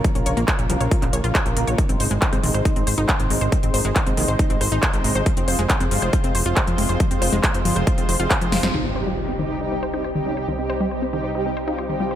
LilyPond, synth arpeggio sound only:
\new Staff \with { instrumentName = "Synth arpeggio sound" } { \time 4/4 \key c \phrygian \tempo 4 = 138 f16 des'16 des''16 bes16 des''16 des'16 f16 des''16 f'16 des'16 des''16 f'16 des''16 f16 bes16 des''16 | ees16 c'16 c''16 aes16 c''16 c'16 ees16 c''16 ees'16 c'16 c''16 ees'16 c''16 ees16 aes16 c''16 | ees16 c'16 c''16 aes16 c''16 c'16 ees16 c''16 ees'16 c'16 c''16 ees'16 c''16 ees16 aes16 c''16 | f16 c'16 c''16 aes16 c''16 c'16 f16 c''16 f'16 c'16 c''16 f'16 c''16 f16 aes16 c''16 |
f16 c'16 c''16 aes16 c''16 c'16 f16 c''16 f'16 c'16 c''16 f'16 c''16 f16 aes16 c''16 | ees16 c'16 c''16 g16 c''16 c'16 ees16 c''16 ees'16 c'16 c''16 ees'16 c''16 ees16 g16 c''16 | ees16 c'16 c''16 g16 c''16 c'16 ees16 c''16 ees'16 c'16 c''16 ees'16 c''16 ees16 g16 c''16 | }